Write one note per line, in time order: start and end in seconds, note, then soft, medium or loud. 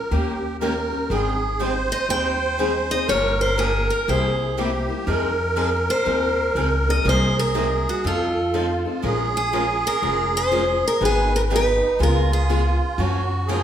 0.00 0.12 A#4 medium
0.10 0.91 D#2 medium
0.10 0.33 D#3 medium
0.10 0.33 A#3 medium
0.10 0.33 C#4 medium
0.10 0.57 G4 medium
0.10 0.33 G4 medium
0.10 0.33 A#4 medium
0.60 0.72 D#3 medium
0.60 0.72 A#3 medium
0.60 0.72 C#4 medium
0.60 0.73 G4 medium
0.60 1.12 A#4 medium
0.60 0.73 A#4 medium
0.92 1.10 C#4 soft
0.92 1.10 G4 soft
0.92 1.09 A#4 medium
1.10 1.90 G#1 medium
1.10 1.32 D#3 medium
1.10 1.32 G3 medium
1.10 1.32 C4 medium
1.10 1.32 D#4 medium
1.10 1.62 G#4 medium
1.10 1.32 G#4 medium
1.60 1.71 D#3 medium
1.60 1.72 G3 medium
1.60 1.72 C4 medium
1.60 1.72 D#4 medium
1.60 1.72 G#4 medium
1.60 3.14 C5 loud
1.92 2.09 D#5 medium
2.09 2.89 D#2 medium
2.09 2.32 D#3 medium
2.09 2.32 G3 medium
2.09 2.32 C4 medium
2.09 2.32 D#4 medium
2.09 2.32 G#4 medium
2.09 2.91 G5 medium
2.59 2.71 D#3 medium
2.59 2.71 G3 medium
2.59 2.71 C4 medium
2.59 2.71 D#4 medium
2.59 2.71 G#4 medium
2.90 3.09 C4 soft
2.90 3.08 D#4 medium
2.90 3.08 G#4 medium
2.90 3.08 D#5 medium
3.08 3.88 G1 medium
3.08 3.30 C#3 medium
3.08 3.31 F3 medium
3.08 3.31 A#3 medium
3.08 3.31 F4 medium
3.08 3.31 G4 medium
3.08 4.11 A#4 loud
3.08 3.41 C#5 medium
3.41 3.58 C5 medium
3.58 3.70 C#3 medium
3.58 3.70 F3 medium
3.58 3.70 A#3 medium
3.58 3.71 F4 medium
3.58 3.71 G4 medium
3.58 3.90 G#4 medium
3.90 4.09 A#4 medium
4.08 4.88 C2 medium
4.08 4.30 C3 medium
4.08 4.30 G3 medium
4.08 4.30 A#3 medium
4.08 4.31 E4 medium
4.08 4.31 G4 medium
4.08 4.60 G#4 medium
4.08 4.86 C5 medium
4.58 4.69 C3 medium
4.58 4.70 G3 medium
4.58 4.70 A#3 medium
4.58 4.70 E4 medium
4.58 5.09 G4 medium
4.58 4.70 G4 medium
4.89 5.07 A#3 soft
4.89 5.07 E4 soft
4.89 5.07 G4 medium
5.07 5.87 F2 medium
5.07 5.29 F3 medium
5.07 5.29 C4 medium
5.07 5.30 D#4 medium
5.07 5.30 G#4 medium
5.07 7.12 A#4 loud
5.56 5.68 F3 medium
5.56 5.68 C4 medium
5.56 5.69 D#4 medium
5.56 5.69 G#4 medium
5.90 6.53 C5 medium
6.06 6.49 D#2 medium
6.06 6.28 F3 medium
6.06 6.28 C4 medium
6.06 6.28 D#4 medium
6.06 6.29 G#4 medium
6.55 6.98 C#2 medium
6.55 6.68 F3 medium
6.55 6.68 C4 medium
6.55 6.68 D#4 medium
6.55 6.68 G#4 medium
6.87 7.06 C4 soft
6.87 7.05 D#4 medium
6.87 7.05 G#4 medium
6.87 7.06 D#5 medium
7.05 7.85 C2 medium
7.05 7.28 C3 medium
7.05 7.28 F#3 medium
7.05 7.28 A#3 medium
7.05 7.28 D#4 medium
7.05 8.08 G#4 medium
7.05 7.28 A#4 medium
7.09 7.37 C5 medium
7.39 7.89 A#4 medium
7.55 7.67 C3 medium
7.55 7.67 F#3 medium
7.55 7.67 A#3 medium
7.55 7.67 D#4 medium
7.55 7.67 A#4 medium
7.89 8.05 F#4 medium
8.04 8.84 F2 medium
8.04 8.26 F3 medium
8.04 8.26 C4 medium
8.04 8.27 D#4 medium
8.04 8.83 F4 medium
8.04 8.56 A4 medium
8.04 8.27 A4 medium
8.53 8.66 F3 medium
8.53 8.66 C4 medium
8.53 8.66 D#4 medium
8.53 8.83 F4 medium
8.53 8.66 A4 medium
8.85 9.03 C4 soft
8.85 9.03 D#4 soft
8.85 9.02 F4 medium
8.85 9.03 A4 medium
9.03 9.83 A#1 medium
9.03 9.25 F3 medium
9.03 9.25 G#3 medium
9.03 9.25 C#4 medium
9.03 9.25 F4 medium
9.03 10.97 G#4 loud
9.03 9.26 A#4 medium
9.37 9.86 G#4 medium
9.53 9.64 F3 medium
9.53 9.65 G#3 medium
9.53 9.65 C#4 medium
9.53 9.65 F4 medium
9.53 9.65 A#4 medium
9.87 10.32 A#4 medium
10.02 10.81 F1 medium
10.02 10.24 F3 medium
10.02 10.24 G#3 medium
10.02 10.24 C#4 medium
10.02 10.24 F4 medium
10.02 10.24 A#4 medium
10.37 10.86 C5 loud
10.51 10.63 F3 medium
10.51 10.63 G#3 medium
10.51 10.63 C#4 medium
10.51 10.63 F4 medium
10.51 10.63 A#4 medium
10.88 11.04 A#4 medium
11.01 11.80 G#1 medium
11.01 11.22 D#3 medium
11.01 11.23 F#3 medium
11.01 11.23 B3 medium
11.01 11.23 D#4 medium
11.01 11.23 G#4 medium
11.01 11.52 B4 loud
11.05 11.33 G#4 medium
11.36 11.41 A#4 medium
11.50 11.62 D#3 medium
11.50 11.62 F#3 medium
11.50 11.62 B3 medium
11.50 12.01 D#4 medium
11.50 11.63 D#4 medium
11.50 11.63 G#4 medium
11.56 11.99 B4 medium
12.00 12.79 C#2 medium
12.00 12.22 C#3 medium
12.00 12.22 G#3 medium
12.00 12.22 B3 medium
12.00 13.01 F4 medium
12.00 12.22 F4 medium
12.00 12.22 G#4 medium
12.00 12.31 A#4 medium
12.33 12.78 G#4 medium
12.49 12.61 C#3 medium
12.49 12.61 G#3 medium
12.49 12.61 B3 medium
12.49 12.61 F4 medium
12.49 12.61 G#4 medium
12.98 13.63 F#2 medium
12.98 13.20 C#3 medium
12.98 13.20 F3 medium
12.98 13.20 F#3 medium
12.98 13.21 A#3 medium
12.98 13.21 C#4 medium
12.98 13.21 F4 medium
12.98 13.49 F#4 medium
12.98 13.21 F#4 medium
12.98 13.21 A#4 medium
13.47 13.60 C#3 medium
13.47 13.60 F3 medium
13.47 13.60 F#3 medium
13.47 13.60 A#3 medium
13.47 13.60 C#4 medium
13.47 13.60 F4 medium
13.47 13.60 F#4 loud
13.47 13.63 G#4 medium
13.47 13.60 A#4 medium